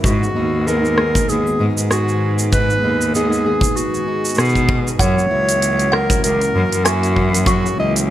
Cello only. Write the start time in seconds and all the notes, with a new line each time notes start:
0.04 G#2
0.35 D#2
1.28 D#2
1.59 G#2
1.77 G#2
2.83 D#2
4.37 B2
4.99 F#2
5.31 C#2
6.23 C#2
6.55 F#2
6.72 F#2
7.78 C#2